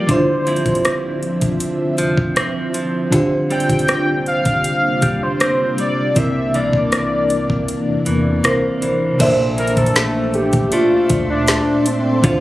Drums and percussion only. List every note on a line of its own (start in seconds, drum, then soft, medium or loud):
0.09 kick loud
0.09 closed hi-hat medium
0.47 closed hi-hat soft
0.56 closed hi-hat soft
0.66 kick medium
0.66 closed hi-hat soft
0.75 closed hi-hat soft
0.85 cross-stick loud
0.85 closed hi-hat medium
1.23 closed hi-hat soft
1.41 kick medium
1.41 closed hi-hat medium
1.60 closed hi-hat medium
1.98 closed hi-hat medium
2.17 kick medium
2.36 cross-stick loud
2.36 closed hi-hat medium
2.74 closed hi-hat medium
3.12 kick loud
3.12 closed hi-hat medium
3.51 closed hi-hat soft
3.60 closed hi-hat soft
3.69 kick medium
3.69 closed hi-hat medium
3.79 closed hi-hat medium
3.88 cross-stick loud
3.88 closed hi-hat medium
4.26 closed hi-hat soft
4.45 kick medium
4.45 closed hi-hat medium
4.64 closed hi-hat medium
5.02 kick medium
5.02 closed hi-hat medium
5.40 cross-stick loud
5.40 closed hi-hat medium
5.78 closed hi-hat medium
6.16 kick loud
6.16 closed hi-hat medium
6.54 closed hi-hat medium
6.73 kick medium
6.92 cross-stick loud
6.92 closed hi-hat medium
7.30 closed hi-hat medium
7.50 kick medium
7.68 closed hi-hat medium
8.06 closed hi-hat medium
8.44 cross-stick loud
8.44 closed hi-hat medium
8.82 closed hi-hat medium
9.20 kick loud
9.20 closed hi-hat medium
9.20 crash loud
9.58 closed hi-hat medium
9.67 closed hi-hat medium
9.77 kick loud
9.77 closed hi-hat medium
9.86 closed hi-hat medium
9.96 snare loud
9.96 closed hi-hat medium
10.34 closed hi-hat soft
10.53 kick medium
10.53 closed hi-hat medium
10.72 closed hi-hat medium
11.09 kick loud
11.09 closed hi-hat medium
11.47 snare loud
11.47 closed hi-hat medium
11.86 closed hi-hat medium
12.24 kick loud
12.24 closed hi-hat medium